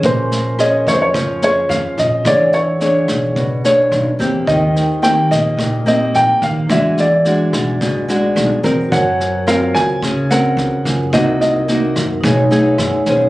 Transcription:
<<
  \new Staff \with { instrumentName = "Grand piano" } { \time 4/4 \key bes \minor \tempo 4 = 108 c''4 ees''8 des''32 c''32 des''8. des''8 f''8 ees''8 | d''8 cis''2. r8 | ees''4 g''8 ees''4 ees''8 g''8 f''8 | e''8 d''2. r8 |
ges''4 f''8 aes''4 ges''4. | ees''8 ees''4 r2 r8 | }
  \new Staff \with { instrumentName = "Vibraphone" } { \time 4/4 \key bes \minor << { r1 | r1 | r1 | r1 |
r1 | r2 r8 fis''8 r4 | } \\ { <des' bes' aes'' c'''>1 | <d' gis' cis'' fis''>1 | <ees' bes' c'' g''>1 | <e' gis' d'' fis''>1 |
<ges' bes' c'' aes''>2.~ <ges' bes' c'' aes''>8 <f' bes' c'' aes''>8 | <ees' bes' c'' ges''>2 <dis' cis'' gis''>2 | } >> }
  \new Staff \with { instrumentName = "Nylon-string guitar" } { \time 4/4 \key bes \minor << { <des' aes' c''>4 <des' aes'>4. <des' aes' c''>4. | <d' gis' cis''>4 <d' gis' cis''>4. <d' gis' cis''>4 <bes c' g'>8~ | <bes c' g'>4 <bes c' g'>4. <bes c' g'>4. | <gis d' fis'>8 r8 <gis d' fis'>4. <gis d' fis'>4 <c' bes'>8~ |
<c' bes'>4 <c' f' bes'>4 r8 <c' bes'>4. | <bes ees' ges'>4 <bes ees' ges'>8 r8 <a dis' gis'>8 <a dis' gis'>4 <cis' gis' c''>8 | } \\ { bes2 f2 | e2 b,2 | ees2 bes,2 | e2 b,2 |
ges2 des2 | c2 b,2 | } >> }
  \new Staff \with { instrumentName = "Upright bass" } { \clef bass \time 4/4 \key bes \minor bes,,4. f,4. f,16 r16 bes,,8 | e,4. b,,4. b,,16 r16 e,8 | ees,4. bes,,4. bes,,16 r16 ees,8 | e,4. b,,4. b,,16 r16 e,8 |
ges,4. des,4. des,16 r16 ges,8 | c,4. ges,8 b,,4 fis,16 r16 b,,8 | }
  \new DrumStaff \with { instrumentName = "Drums" } \drummode { \time 4/4 <bd sn>8 sn8 <ss sn>8 <bd sn>8 <bd ss sn>8 sn8 sn8 <bd sn>8 | <bd ss sn>8 sn8 sn8 <bd ss sn>8 <bd sn>8 sn8 <ss sn>8 <bd sn>8 | <bd sn>8 sn8 <ss sn>8 <bd sn>8 <bd ss sn>8 sn8 sn8 <bd sn>8 | <bd ss sn>8 sn8 sn8 <bd ss sn>8 <bd sn>8 sn8 <ss sn>8 <bd sn>8 |
<bd sn>8 sn8 <ss sn>8 <bd sn>8 <bd ss sn>8 sn8 sn8 <bd sn>8 | <bd ss sn>8 sn8 sn8 <bd ss sn>8 <bd sn>8 sn8 <ss sn>8 <bd sn>8 | }
>>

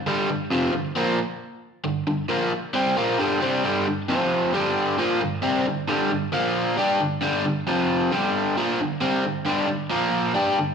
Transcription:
\new Staff \with { instrumentName = "Overdriven electric guitar" } { \clef bass \time 4/4 \key g \minor \tempo 4 = 134 <g, d g>8 <g, d>8 <f, c f>8 <g, d>8 <bes, f bes>8 r4. | <g, d>8 <g, d>8 <bes, f bes>8 r8 <c g c'>8 <bes, f bes>8 <g, d g>8 <c g c'>8 | <g, d g>8 <g, d>8 <f, c f>4 <g, d g>4 <bes, f bes>8 <g, d>8 | <c g c'>8 <g, d>8 <g, d g>8 <g, d>8 <bes, f bes>4 <g d' g'>8 <g, d>8 |
<g, d g>8 <g, d>8 <f, c f>4 <g, d g>4 <bes, f bes>8 <g, d>8 | <c g c'>8 <g, d>8 <g, d g>8 <g, d>8 <bes, f bes>4 <g d' g'>8 <g, d>8 | }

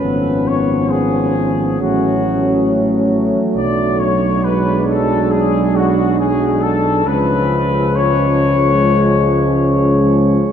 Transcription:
<<
  \new Staff \with { instrumentName = "Trumpet section" } { \time 4/4 \key cis \phrygian \tempo 4 = 68 b'8 cis''8 gis'4 fis'4 r4 | d''8 cis''8 b'8 a'8 gis'8 fis'8 gis'8 a'8 | b'4 cis''2~ cis''8 r8 | }
  \new Staff \with { instrumentName = "French horn section" } { \time 4/4 \key cis \phrygian cis'2 cis'2 | d'1 | cis'1 | }
  \new Staff \with { instrumentName = "Trombone section" } { \clef bass \time 4/4 \key cis \phrygian b2 a2~ | a4 gis2. | gis1 | }
  \new Staff \with { instrumentName = "Trombone" } { \clef bass \time 4/4 \key cis \phrygian eis2 fis2~ | fis2.~ fis8 r8 | eis1 | }
  \new Staff \with { instrumentName = "Tuba" } { \clef bass \time 4/4 \key cis \phrygian gis,,2 a,,4. r8 | b,,1 | cis,1 | }
>>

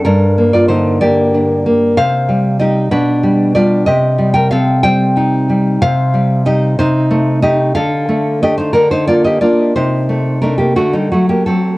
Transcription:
\new Staff \with { instrumentName = "Nylon-string guitar" } { \time 6/8 \key g \minor \tempo 4. = 62 << { <d' bes'>8. <f' d''>16 <ees' c''>8 <g' d''>4. | <c'' f''>4 <g' ees''>8 <d' b'>4 <f' d''>8 | <g' ees''>8. <bes' g''>16 <a' f''>8 <c'' g''>4. | <c'' f''>4 <g' ees''>8 <ees' c''>4 <g' ees''>8 |
<a' f''>4 <g' ees''>16 <ees' c''>16 <d' bes'>16 <ees' c''>16 <f' d''>16 <g' ees''>16 <f' d''>8 | <ees' c''>4 <d' bes'>16 <bes g'>16 <a fis'>16 <g ees'>16 <a fis'>16 <bes g'>16 <c' a'>8 | } \\ { g,8 bes8 d8 bes8 d'8 bes8 | c8 g8 <g ees'>8 b,8 g8 <g d'>8 | c8 g8 c'8 g8 ees'8 g8 | c8 g8 <g ees'>8 c8 a8 <a ees'>8 |
d8 a8 <a d'>8 d8 bes8 <bes d'>8 | c8 a8 <a ees'>8 d8 fis8 fis8 | } >> }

